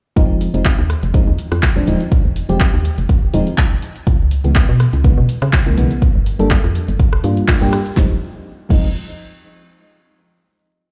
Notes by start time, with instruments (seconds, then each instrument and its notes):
0.16 fm bass F1, fm electric piano F3 G#3 C4 D#4, kick, closed hi-hat, cabasa
0.41 open hi-hat, cabasa
0.54 fm bass F1, fm electric piano F3 G#3 C4 D#4, closed hi-hat, cabasa
0.65 kick, clap, closed hi-hat, cabasa
0.79 fm bass D#2, cabasa
0.90 cross-stick, open hi-hat, cabasa
1.03 fm bass F1, closed hi-hat, cabasa
1.14 fm electric piano F3 G#3 C4 D#4, kick, closed hi-hat, cabasa
1.27 fm bass D#2
1.39 open hi-hat, cabasa
1.52 fm bass F2, cross-stick, closed hi-hat, cabasa
1.63 kick, clap, closed hi-hat, cabasa
1.76 fm bass F1, fm electric piano F3 G#3 C4 D4, closed hi-hat
1.87 fm bass D#1, fm electric piano F3 G#3 C4 D#4, open hi-hat, cabasa
2.00 closed hi-hat, cabasa
2.12 kick, closed hi-hat, cabasa
2.25 fm bass F1
2.36 open hi-hat, cabasa
2.49 fm bass F1, fm electric piano F3 G#3 C4 G4, closed hi-hat, cabasa
2.60 kick, clap, closed hi-hat, cabasa
2.74 fm bass D#2, cabasa
2.85 open hi-hat, cabasa
2.98 fm bass F1, closed hi-hat, cabasa
3.09 fm bass F1, kick, closed hi-hat, cabasa
3.33 fm bass D#1, fm electric piano F3 G#3 C4 D#4, open hi-hat, cabasa
3.47 closed hi-hat, cabasa
3.58 kick, clap, closed hi-hat, cabasa
3.71 closed hi-hat
3.82 open hi-hat, cabasa
3.96 closed hi-hat, cabasa
4.07 fm bass C#2, kick, closed hi-hat, cabasa
4.31 open hi-hat, cabasa
4.44 fm bass C#2, fm electric piano C#3 E3 G#3 B3, closed hi-hat, cabasa
4.55 kick, clap, closed hi-hat, cabasa
4.69 fm bass B2, cabasa
4.80 cross-stick, open hi-hat, cabasa
4.93 fm bass C#2, closed hi-hat, cabasa
5.04 fm electric piano C#3 E3 G#3 B3, kick, closed hi-hat, cabasa
5.18 fm bass B2
5.29 open hi-hat, cabasa
5.42 fm bass C#3, cross-stick, closed hi-hat, cabasa
5.53 kick, clap, closed hi-hat, cabasa
5.66 fm bass C#2, fm electric piano C#3 E3 G#3 A#3, closed hi-hat
5.77 fm bass B1, fm electric piano C#3 E3 G#3 B3, open hi-hat, cabasa
5.91 closed hi-hat, cabasa
6.02 kick, closed hi-hat, cabasa
6.15 fm bass G1
6.26 open hi-hat, cabasa
6.39 fm bass G1, fm electric piano G3 A#3 D4 A4, closed hi-hat, cabasa
6.51 kick, clap, closed hi-hat, cabasa
6.64 fm bass F2, closed hi-hat, cabasa
6.75 open hi-hat, cabasa
6.88 fm bass G1, closed hi-hat, cabasa
7.00 kick, closed hi-hat, cabasa
7.13 cross-stick
7.24 fm bass G2, fm electric piano G3 A#3 D4 F4, open hi-hat, cabasa
7.37 closed hi-hat, cabasa
7.48 fm electric piano G3 A#3 D4 F4, kick, clap, closed hi-hat, cabasa
7.61 fm bass G2, fm electric piano G3 A#3 D4 G4, closed hi-hat, cabasa
7.73 cross-stick, open hi-hat, cabasa
7.86 closed hi-hat, cabasa
7.96 fm bass F1, fm electric piano F3 G#3 C4 D#4, kick, snare
8.69 fm bass F1, fm electric piano F3 G#3 C4 D#4, kick, crash